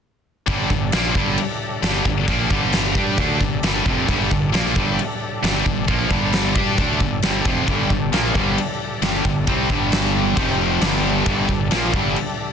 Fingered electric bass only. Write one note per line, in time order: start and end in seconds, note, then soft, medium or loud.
0.48 0.69 G1 medium
0.71 0.91 G1 medium
0.93 1.14 A#1 medium
1.15 1.36 G1 medium
1.83 2.04 G1 medium
2.06 2.27 G1 medium
2.28 2.49 A#1 loud
2.50 2.92 G1 loud
2.95 3.16 G2 loud
3.18 3.39 D2 loud
3.41 3.62 G1 medium
3.63 3.84 G1 medium
3.86 4.07 F1 medium
4.09 4.29 G1 medium
4.32 4.52 G1 medium
4.53 4.74 A#1 medium
4.76 4.97 G1 medium
5.44 5.64 G1 medium
5.66 5.87 G1 medium
5.89 6.09 A#1 medium
6.11 6.53 G1 medium
6.56 6.77 G2 medium
6.78 6.99 D2 medium
7.00 7.21 G1 medium
7.22 7.44 G1 medium
7.45 7.66 F1 medium
7.68 7.89 G1 medium
7.90 8.11 G1 medium
8.12 8.33 A#1 medium
8.36 8.56 G1 medium
9.02 9.23 G1 medium
9.25 9.46 G1 medium
9.47 9.68 C2 medium
9.70 10.33 G1 medium
10.37 10.79 F1 medium
10.82 11.23 G1 medium
11.49 11.70 G1 medium
11.71 11.92 A#1 medium
11.94 12.14 G1 medium